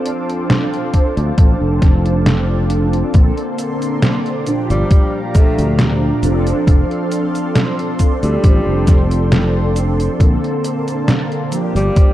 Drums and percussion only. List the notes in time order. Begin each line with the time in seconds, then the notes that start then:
0.06 closed hi-hat
0.30 closed hi-hat
0.50 snare, closed hi-hat
0.74 closed hi-hat
0.94 kick, closed hi-hat
1.17 closed hi-hat
1.38 kick, closed hi-hat
1.82 kick, snare, closed hi-hat
2.06 closed hi-hat
2.26 snare, closed hi-hat
2.70 closed hi-hat
2.93 closed hi-hat
3.14 kick, closed hi-hat, cabasa
3.37 closed hi-hat
3.58 closed hi-hat, cabasa
3.82 closed hi-hat, cabasa
4.02 snare, closed hi-hat, cabasa
4.26 closed hi-hat
4.47 closed hi-hat, cabasa
4.70 closed hi-hat, cabasa
4.91 kick, closed hi-hat, cabasa
5.35 kick, closed hi-hat, cabasa
5.59 closed hi-hat, cabasa
5.79 snare, closed hi-hat, cabasa
6.23 closed hi-hat, cabasa
6.47 closed hi-hat, cabasa
6.67 kick, closed hi-hat, cabasa
6.91 closed hi-hat
7.12 closed hi-hat, cabasa
7.35 closed hi-hat, cabasa
7.55 snare, closed hi-hat, cabasa
7.79 closed hi-hat
7.99 kick, closed hi-hat, cabasa
8.23 closed hi-hat, cabasa
8.44 kick, closed hi-hat, cabasa
8.87 kick, snare, closed hi-hat, cabasa
9.11 closed hi-hat, cabasa
9.32 snare, closed hi-hat, cabasa
9.76 closed hi-hat, cabasa
10.00 closed hi-hat, cabasa
10.20 kick, closed hi-hat, cabasa
10.44 closed hi-hat
10.64 closed hi-hat, cabasa
10.88 closed hi-hat, cabasa
11.08 snare, closed hi-hat, cabasa
11.32 closed hi-hat
11.52 closed hi-hat, cabasa
11.76 closed hi-hat, cabasa
11.96 kick, closed hi-hat, cabasa